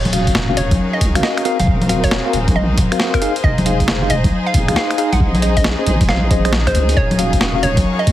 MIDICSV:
0, 0, Header, 1, 7, 480
1, 0, Start_track
1, 0, Key_signature, -5, "minor"
1, 0, Tempo, 441176
1, 1820, Time_signature, 4, 2, 24, 8
1, 8836, End_track
2, 0, Start_track
2, 0, Title_t, "Synth pluck"
2, 0, Program_c, 0, 84
2, 0, Note_on_c, 0, 73, 101
2, 141, Note_off_c, 0, 73, 0
2, 620, Note_on_c, 0, 73, 98
2, 861, Note_off_c, 0, 73, 0
2, 1016, Note_on_c, 0, 75, 92
2, 1257, Note_off_c, 0, 75, 0
2, 1340, Note_on_c, 0, 75, 94
2, 1581, Note_off_c, 0, 75, 0
2, 1737, Note_on_c, 0, 77, 88
2, 1873, Note_off_c, 0, 77, 0
2, 2216, Note_on_c, 0, 73, 89
2, 2353, Note_off_c, 0, 73, 0
2, 2781, Note_on_c, 0, 75, 97
2, 3022, Note_off_c, 0, 75, 0
2, 3415, Note_on_c, 0, 70, 94
2, 3656, Note_off_c, 0, 70, 0
2, 3740, Note_on_c, 0, 75, 101
2, 3981, Note_off_c, 0, 75, 0
2, 4461, Note_on_c, 0, 75, 96
2, 4702, Note_off_c, 0, 75, 0
2, 4857, Note_on_c, 0, 77, 93
2, 5097, Note_off_c, 0, 77, 0
2, 5182, Note_on_c, 0, 77, 92
2, 5422, Note_off_c, 0, 77, 0
2, 5578, Note_on_c, 0, 78, 89
2, 5714, Note_off_c, 0, 78, 0
2, 6057, Note_on_c, 0, 75, 92
2, 6194, Note_off_c, 0, 75, 0
2, 6621, Note_on_c, 0, 77, 99
2, 6862, Note_off_c, 0, 77, 0
2, 7257, Note_on_c, 0, 72, 90
2, 7497, Note_off_c, 0, 72, 0
2, 7579, Note_on_c, 0, 73, 101
2, 7821, Note_off_c, 0, 73, 0
2, 8301, Note_on_c, 0, 73, 94
2, 8542, Note_off_c, 0, 73, 0
2, 8695, Note_on_c, 0, 75, 94
2, 8836, Note_off_c, 0, 75, 0
2, 8836, End_track
3, 0, Start_track
3, 0, Title_t, "String section"
3, 0, Program_c, 1, 48
3, 0, Note_on_c, 1, 63, 71
3, 2, Note_on_c, 1, 68, 88
3, 557, Note_on_c, 1, 73, 68
3, 1580, Note_off_c, 1, 73, 0
3, 1711, Note_on_c, 1, 72, 72
3, 7581, Note_off_c, 1, 72, 0
3, 8163, Note_on_c, 1, 73, 88
3, 8836, Note_off_c, 1, 63, 0
3, 8836, Note_off_c, 1, 68, 0
3, 8836, Note_off_c, 1, 73, 0
3, 8836, End_track
4, 0, Start_track
4, 0, Title_t, "Tine electric piano"
4, 0, Program_c, 2, 4
4, 140, Note_on_c, 2, 61, 81
4, 140, Note_on_c, 2, 66, 72
4, 140, Note_on_c, 2, 77, 85
4, 499, Note_off_c, 2, 61, 0
4, 499, Note_off_c, 2, 66, 0
4, 499, Note_off_c, 2, 77, 0
4, 535, Note_on_c, 2, 61, 79
4, 535, Note_on_c, 2, 66, 69
4, 535, Note_on_c, 2, 77, 85
4, 662, Note_off_c, 2, 61, 0
4, 662, Note_off_c, 2, 66, 0
4, 662, Note_off_c, 2, 77, 0
4, 1255, Note_on_c, 2, 61, 81
4, 1256, Note_on_c, 2, 66, 75
4, 1256, Note_on_c, 2, 77, 93
4, 1560, Note_off_c, 2, 61, 0
4, 1560, Note_off_c, 2, 66, 0
4, 1560, Note_off_c, 2, 77, 0
4, 1580, Note_on_c, 2, 60, 96
4, 1580, Note_on_c, 2, 66, 87
4, 1580, Note_on_c, 2, 70, 92
4, 1580, Note_on_c, 2, 77, 109
4, 1703, Note_off_c, 2, 70, 0
4, 1704, Note_off_c, 2, 60, 0
4, 1704, Note_off_c, 2, 66, 0
4, 1704, Note_off_c, 2, 77, 0
4, 2060, Note_on_c, 2, 60, 80
4, 2060, Note_on_c, 2, 66, 73
4, 2060, Note_on_c, 2, 70, 76
4, 2060, Note_on_c, 2, 77, 90
4, 2419, Note_off_c, 2, 60, 0
4, 2419, Note_off_c, 2, 66, 0
4, 2419, Note_off_c, 2, 70, 0
4, 2419, Note_off_c, 2, 77, 0
4, 2456, Note_on_c, 2, 60, 75
4, 2456, Note_on_c, 2, 66, 67
4, 2456, Note_on_c, 2, 70, 70
4, 2456, Note_on_c, 2, 77, 85
4, 2582, Note_off_c, 2, 60, 0
4, 2582, Note_off_c, 2, 66, 0
4, 2582, Note_off_c, 2, 70, 0
4, 2582, Note_off_c, 2, 77, 0
4, 3175, Note_on_c, 2, 60, 81
4, 3175, Note_on_c, 2, 66, 73
4, 3175, Note_on_c, 2, 70, 73
4, 3175, Note_on_c, 2, 77, 90
4, 3480, Note_off_c, 2, 60, 0
4, 3480, Note_off_c, 2, 66, 0
4, 3480, Note_off_c, 2, 70, 0
4, 3480, Note_off_c, 2, 77, 0
4, 3499, Note_on_c, 2, 68, 90
4, 3500, Note_on_c, 2, 63, 101
4, 3500, Note_on_c, 2, 77, 108
4, 3623, Note_off_c, 2, 68, 0
4, 3624, Note_off_c, 2, 63, 0
4, 3624, Note_off_c, 2, 77, 0
4, 3981, Note_on_c, 2, 63, 80
4, 3981, Note_on_c, 2, 68, 74
4, 3981, Note_on_c, 2, 77, 90
4, 4339, Note_off_c, 2, 63, 0
4, 4339, Note_off_c, 2, 68, 0
4, 4339, Note_off_c, 2, 77, 0
4, 4377, Note_on_c, 2, 63, 74
4, 4377, Note_on_c, 2, 68, 71
4, 4377, Note_on_c, 2, 77, 87
4, 4502, Note_off_c, 2, 63, 0
4, 4502, Note_off_c, 2, 77, 0
4, 4503, Note_off_c, 2, 68, 0
4, 5096, Note_on_c, 2, 68, 73
4, 5097, Note_on_c, 2, 63, 83
4, 5097, Note_on_c, 2, 77, 90
4, 5400, Note_off_c, 2, 68, 0
4, 5401, Note_off_c, 2, 63, 0
4, 5401, Note_off_c, 2, 77, 0
4, 5419, Note_on_c, 2, 68, 88
4, 5420, Note_on_c, 2, 63, 96
4, 5420, Note_on_c, 2, 77, 103
4, 5543, Note_off_c, 2, 63, 0
4, 5543, Note_off_c, 2, 68, 0
4, 5544, Note_off_c, 2, 77, 0
4, 5899, Note_on_c, 2, 68, 72
4, 5900, Note_on_c, 2, 61, 76
4, 5900, Note_on_c, 2, 72, 71
4, 5900, Note_on_c, 2, 75, 92
4, 6259, Note_off_c, 2, 61, 0
4, 6259, Note_off_c, 2, 68, 0
4, 6259, Note_off_c, 2, 72, 0
4, 6259, Note_off_c, 2, 75, 0
4, 6297, Note_on_c, 2, 61, 78
4, 6297, Note_on_c, 2, 68, 70
4, 6297, Note_on_c, 2, 72, 70
4, 6297, Note_on_c, 2, 75, 85
4, 6422, Note_off_c, 2, 61, 0
4, 6422, Note_off_c, 2, 68, 0
4, 6422, Note_off_c, 2, 72, 0
4, 6422, Note_off_c, 2, 75, 0
4, 6860, Note_on_c, 2, 61, 89
4, 6860, Note_on_c, 2, 68, 84
4, 6860, Note_on_c, 2, 72, 84
4, 6860, Note_on_c, 2, 75, 99
4, 6993, Note_off_c, 2, 61, 0
4, 6993, Note_off_c, 2, 68, 0
4, 6993, Note_off_c, 2, 72, 0
4, 6993, Note_off_c, 2, 75, 0
4, 7017, Note_on_c, 2, 61, 93
4, 7017, Note_on_c, 2, 68, 86
4, 7017, Note_on_c, 2, 72, 89
4, 7017, Note_on_c, 2, 75, 102
4, 7083, Note_off_c, 2, 68, 0
4, 7083, Note_off_c, 2, 72, 0
4, 7083, Note_off_c, 2, 75, 0
4, 7084, Note_off_c, 2, 61, 0
4, 7256, Note_on_c, 2, 68, 68
4, 7256, Note_on_c, 2, 72, 69
4, 7257, Note_on_c, 2, 61, 77
4, 7257, Note_on_c, 2, 75, 84
4, 7570, Note_off_c, 2, 68, 0
4, 7570, Note_off_c, 2, 72, 0
4, 7571, Note_off_c, 2, 61, 0
4, 7571, Note_off_c, 2, 75, 0
4, 7820, Note_on_c, 2, 61, 79
4, 7820, Note_on_c, 2, 77, 90
4, 7821, Note_on_c, 2, 66, 70
4, 8179, Note_off_c, 2, 61, 0
4, 8179, Note_off_c, 2, 66, 0
4, 8179, Note_off_c, 2, 77, 0
4, 8216, Note_on_c, 2, 61, 74
4, 8216, Note_on_c, 2, 66, 69
4, 8216, Note_on_c, 2, 77, 81
4, 8342, Note_off_c, 2, 61, 0
4, 8342, Note_off_c, 2, 66, 0
4, 8342, Note_off_c, 2, 77, 0
4, 8836, End_track
5, 0, Start_track
5, 0, Title_t, "Violin section"
5, 0, Program_c, 3, 48
5, 0, Note_on_c, 3, 61, 81
5, 0, Note_on_c, 3, 66, 75
5, 0, Note_on_c, 3, 70, 94
5, 0, Note_on_c, 3, 77, 76
5, 1564, Note_off_c, 3, 61, 0
5, 1564, Note_off_c, 3, 66, 0
5, 1581, Note_on_c, 3, 60, 85
5, 1581, Note_on_c, 3, 66, 78
5, 3464, Note_off_c, 3, 70, 0
5, 3481, Note_off_c, 3, 60, 0
5, 3482, Note_off_c, 3, 66, 0
5, 3499, Note_on_c, 3, 72, 92
5, 3500, Note_on_c, 3, 63, 88
5, 3500, Note_on_c, 3, 68, 78
5, 5617, Note_off_c, 3, 77, 0
5, 5661, Note_on_c, 3, 61, 81
5, 7539, Note_off_c, 3, 68, 0
5, 7539, Note_off_c, 3, 72, 0
5, 7540, Note_off_c, 3, 63, 0
5, 7580, Note_on_c, 3, 66, 77
5, 7580, Note_on_c, 3, 70, 94
5, 7580, Note_on_c, 3, 77, 80
5, 8836, Note_off_c, 3, 61, 0
5, 8836, Note_off_c, 3, 66, 0
5, 8836, Note_off_c, 3, 70, 0
5, 8836, Note_off_c, 3, 77, 0
5, 8836, End_track
6, 0, Start_track
6, 0, Title_t, "Wobble bass"
6, 0, Program_c, 4, 39
6, 0, Note_on_c, 4, 27, 100
6, 596, Note_off_c, 4, 27, 0
6, 619, Note_on_c, 4, 27, 90
6, 776, Note_on_c, 4, 34, 88
6, 792, Note_off_c, 4, 27, 0
6, 845, Note_off_c, 4, 34, 0
6, 1100, Note_on_c, 4, 37, 84
6, 1255, Note_on_c, 4, 32, 96
6, 1272, Note_off_c, 4, 37, 0
6, 1325, Note_off_c, 4, 32, 0
6, 1736, Note_on_c, 4, 27, 94
6, 2410, Note_off_c, 4, 27, 0
6, 2540, Note_on_c, 4, 27, 92
6, 2696, Note_on_c, 4, 34, 90
6, 2712, Note_off_c, 4, 27, 0
6, 3021, Note_on_c, 4, 27, 98
6, 3037, Note_off_c, 4, 34, 0
6, 3148, Note_off_c, 4, 27, 0
6, 3741, Note_on_c, 4, 29, 97
6, 4436, Note_off_c, 4, 29, 0
6, 4459, Note_on_c, 4, 29, 91
6, 4616, Note_on_c, 4, 36, 88
6, 4632, Note_off_c, 4, 29, 0
6, 4685, Note_off_c, 4, 36, 0
6, 4941, Note_on_c, 4, 27, 84
6, 5096, Note_on_c, 4, 34, 98
6, 5112, Note_off_c, 4, 27, 0
6, 5165, Note_off_c, 4, 34, 0
6, 5576, Note_on_c, 4, 34, 95
6, 6251, Note_off_c, 4, 34, 0
6, 6381, Note_on_c, 4, 34, 90
6, 6536, Note_on_c, 4, 29, 87
6, 6553, Note_off_c, 4, 34, 0
6, 6621, Note_on_c, 4, 34, 82
6, 6637, Note_off_c, 4, 29, 0
6, 6830, Note_off_c, 4, 34, 0
6, 6861, Note_on_c, 4, 34, 108
6, 7316, Note_off_c, 4, 34, 0
6, 7341, Note_on_c, 4, 37, 85
6, 7550, Note_off_c, 4, 37, 0
6, 7581, Note_on_c, 4, 27, 98
6, 8276, Note_off_c, 4, 27, 0
6, 8299, Note_on_c, 4, 27, 93
6, 8457, Note_on_c, 4, 34, 88
6, 8473, Note_off_c, 4, 27, 0
6, 8525, Note_off_c, 4, 34, 0
6, 8780, Note_on_c, 4, 37, 87
6, 8836, Note_off_c, 4, 37, 0
6, 8836, End_track
7, 0, Start_track
7, 0, Title_t, "Drums"
7, 56, Note_on_c, 9, 42, 38
7, 56, Note_on_c, 9, 63, 79
7, 140, Note_off_c, 9, 42, 0
7, 140, Note_on_c, 9, 42, 109
7, 165, Note_off_c, 9, 63, 0
7, 249, Note_off_c, 9, 42, 0
7, 296, Note_on_c, 9, 36, 64
7, 296, Note_on_c, 9, 42, 62
7, 380, Note_on_c, 9, 38, 127
7, 405, Note_off_c, 9, 36, 0
7, 405, Note_off_c, 9, 42, 0
7, 489, Note_off_c, 9, 38, 0
7, 620, Note_on_c, 9, 42, 99
7, 728, Note_off_c, 9, 42, 0
7, 776, Note_on_c, 9, 42, 66
7, 776, Note_on_c, 9, 63, 77
7, 777, Note_on_c, 9, 36, 110
7, 885, Note_off_c, 9, 36, 0
7, 885, Note_off_c, 9, 42, 0
7, 885, Note_off_c, 9, 63, 0
7, 1100, Note_on_c, 9, 42, 120
7, 1101, Note_on_c, 9, 36, 104
7, 1208, Note_off_c, 9, 42, 0
7, 1209, Note_off_c, 9, 36, 0
7, 1256, Note_on_c, 9, 26, 73
7, 1256, Note_on_c, 9, 42, 68
7, 1340, Note_on_c, 9, 38, 117
7, 1365, Note_off_c, 9, 26, 0
7, 1365, Note_off_c, 9, 42, 0
7, 1448, Note_off_c, 9, 38, 0
7, 1496, Note_on_c, 9, 26, 72
7, 1496, Note_on_c, 9, 42, 53
7, 1579, Note_off_c, 9, 42, 0
7, 1579, Note_on_c, 9, 42, 98
7, 1605, Note_off_c, 9, 26, 0
7, 1688, Note_off_c, 9, 42, 0
7, 1735, Note_on_c, 9, 42, 67
7, 1735, Note_on_c, 9, 63, 80
7, 1821, Note_on_c, 9, 36, 123
7, 1844, Note_off_c, 9, 42, 0
7, 1844, Note_off_c, 9, 63, 0
7, 1929, Note_off_c, 9, 36, 0
7, 1976, Note_on_c, 9, 42, 36
7, 1976, Note_on_c, 9, 63, 76
7, 2060, Note_off_c, 9, 42, 0
7, 2060, Note_on_c, 9, 42, 110
7, 2084, Note_off_c, 9, 63, 0
7, 2169, Note_off_c, 9, 42, 0
7, 2216, Note_on_c, 9, 36, 61
7, 2216, Note_on_c, 9, 42, 61
7, 2299, Note_on_c, 9, 38, 127
7, 2324, Note_off_c, 9, 42, 0
7, 2325, Note_off_c, 9, 36, 0
7, 2408, Note_off_c, 9, 38, 0
7, 2540, Note_on_c, 9, 42, 93
7, 2648, Note_off_c, 9, 42, 0
7, 2696, Note_on_c, 9, 42, 66
7, 2696, Note_on_c, 9, 63, 77
7, 2697, Note_on_c, 9, 36, 115
7, 2805, Note_off_c, 9, 36, 0
7, 2805, Note_off_c, 9, 42, 0
7, 2805, Note_off_c, 9, 63, 0
7, 3019, Note_on_c, 9, 42, 109
7, 3019, Note_on_c, 9, 63, 80
7, 3021, Note_on_c, 9, 36, 113
7, 3128, Note_off_c, 9, 42, 0
7, 3128, Note_off_c, 9, 63, 0
7, 3130, Note_off_c, 9, 36, 0
7, 3176, Note_on_c, 9, 26, 75
7, 3176, Note_on_c, 9, 42, 64
7, 3259, Note_on_c, 9, 38, 117
7, 3284, Note_off_c, 9, 26, 0
7, 3284, Note_off_c, 9, 42, 0
7, 3368, Note_off_c, 9, 38, 0
7, 3416, Note_on_c, 9, 26, 72
7, 3416, Note_on_c, 9, 42, 51
7, 3417, Note_on_c, 9, 36, 62
7, 3500, Note_off_c, 9, 42, 0
7, 3500, Note_on_c, 9, 42, 95
7, 3524, Note_off_c, 9, 26, 0
7, 3525, Note_off_c, 9, 36, 0
7, 3608, Note_off_c, 9, 42, 0
7, 3656, Note_on_c, 9, 42, 64
7, 3741, Note_on_c, 9, 36, 127
7, 3765, Note_off_c, 9, 42, 0
7, 3850, Note_off_c, 9, 36, 0
7, 3896, Note_on_c, 9, 42, 36
7, 3896, Note_on_c, 9, 63, 81
7, 3981, Note_off_c, 9, 42, 0
7, 3981, Note_on_c, 9, 42, 104
7, 4005, Note_off_c, 9, 63, 0
7, 4089, Note_off_c, 9, 42, 0
7, 4136, Note_on_c, 9, 36, 65
7, 4136, Note_on_c, 9, 42, 59
7, 4220, Note_on_c, 9, 38, 127
7, 4244, Note_off_c, 9, 42, 0
7, 4245, Note_off_c, 9, 36, 0
7, 4329, Note_off_c, 9, 38, 0
7, 4459, Note_on_c, 9, 42, 91
7, 4568, Note_off_c, 9, 42, 0
7, 4616, Note_on_c, 9, 36, 111
7, 4616, Note_on_c, 9, 42, 61
7, 4616, Note_on_c, 9, 63, 76
7, 4725, Note_off_c, 9, 36, 0
7, 4725, Note_off_c, 9, 42, 0
7, 4725, Note_off_c, 9, 63, 0
7, 4940, Note_on_c, 9, 42, 106
7, 4941, Note_on_c, 9, 36, 114
7, 5049, Note_off_c, 9, 42, 0
7, 5050, Note_off_c, 9, 36, 0
7, 5097, Note_on_c, 9, 26, 73
7, 5097, Note_on_c, 9, 42, 63
7, 5180, Note_on_c, 9, 38, 118
7, 5205, Note_off_c, 9, 26, 0
7, 5205, Note_off_c, 9, 42, 0
7, 5289, Note_off_c, 9, 38, 0
7, 5337, Note_on_c, 9, 26, 71
7, 5337, Note_on_c, 9, 42, 47
7, 5420, Note_off_c, 9, 42, 0
7, 5420, Note_on_c, 9, 42, 86
7, 5446, Note_off_c, 9, 26, 0
7, 5529, Note_off_c, 9, 42, 0
7, 5576, Note_on_c, 9, 42, 62
7, 5576, Note_on_c, 9, 63, 80
7, 5661, Note_on_c, 9, 36, 125
7, 5685, Note_off_c, 9, 42, 0
7, 5685, Note_off_c, 9, 63, 0
7, 5770, Note_off_c, 9, 36, 0
7, 5817, Note_on_c, 9, 42, 36
7, 5817, Note_on_c, 9, 63, 81
7, 5901, Note_off_c, 9, 42, 0
7, 5901, Note_on_c, 9, 42, 102
7, 5926, Note_off_c, 9, 63, 0
7, 6009, Note_off_c, 9, 42, 0
7, 6057, Note_on_c, 9, 36, 67
7, 6057, Note_on_c, 9, 42, 60
7, 6141, Note_on_c, 9, 38, 127
7, 6166, Note_off_c, 9, 36, 0
7, 6166, Note_off_c, 9, 42, 0
7, 6250, Note_off_c, 9, 38, 0
7, 6381, Note_on_c, 9, 42, 91
7, 6490, Note_off_c, 9, 42, 0
7, 6537, Note_on_c, 9, 36, 110
7, 6537, Note_on_c, 9, 42, 62
7, 6537, Note_on_c, 9, 63, 78
7, 6622, Note_on_c, 9, 38, 65
7, 6646, Note_off_c, 9, 36, 0
7, 6646, Note_off_c, 9, 42, 0
7, 6646, Note_off_c, 9, 63, 0
7, 6730, Note_off_c, 9, 38, 0
7, 6861, Note_on_c, 9, 36, 110
7, 6862, Note_on_c, 9, 42, 104
7, 6862, Note_on_c, 9, 63, 84
7, 6970, Note_off_c, 9, 36, 0
7, 6970, Note_off_c, 9, 42, 0
7, 6970, Note_off_c, 9, 63, 0
7, 7018, Note_on_c, 9, 26, 67
7, 7018, Note_on_c, 9, 42, 64
7, 7101, Note_on_c, 9, 38, 121
7, 7126, Note_off_c, 9, 26, 0
7, 7126, Note_off_c, 9, 42, 0
7, 7210, Note_off_c, 9, 38, 0
7, 7257, Note_on_c, 9, 26, 64
7, 7257, Note_on_c, 9, 36, 62
7, 7257, Note_on_c, 9, 42, 51
7, 7341, Note_off_c, 9, 42, 0
7, 7341, Note_on_c, 9, 42, 92
7, 7366, Note_off_c, 9, 26, 0
7, 7366, Note_off_c, 9, 36, 0
7, 7450, Note_off_c, 9, 42, 0
7, 7496, Note_on_c, 9, 42, 67
7, 7581, Note_on_c, 9, 36, 121
7, 7605, Note_off_c, 9, 42, 0
7, 7690, Note_off_c, 9, 36, 0
7, 7736, Note_on_c, 9, 42, 38
7, 7736, Note_on_c, 9, 63, 82
7, 7820, Note_off_c, 9, 42, 0
7, 7820, Note_on_c, 9, 42, 103
7, 7845, Note_off_c, 9, 63, 0
7, 7929, Note_off_c, 9, 42, 0
7, 7975, Note_on_c, 9, 42, 63
7, 7977, Note_on_c, 9, 36, 61
7, 8060, Note_on_c, 9, 38, 121
7, 8084, Note_off_c, 9, 42, 0
7, 8086, Note_off_c, 9, 36, 0
7, 8169, Note_off_c, 9, 38, 0
7, 8300, Note_on_c, 9, 42, 90
7, 8409, Note_off_c, 9, 42, 0
7, 8455, Note_on_c, 9, 42, 67
7, 8455, Note_on_c, 9, 63, 80
7, 8457, Note_on_c, 9, 36, 106
7, 8564, Note_off_c, 9, 42, 0
7, 8564, Note_off_c, 9, 63, 0
7, 8566, Note_off_c, 9, 36, 0
7, 8780, Note_on_c, 9, 42, 102
7, 8781, Note_on_c, 9, 36, 109
7, 8836, Note_off_c, 9, 36, 0
7, 8836, Note_off_c, 9, 42, 0
7, 8836, End_track
0, 0, End_of_file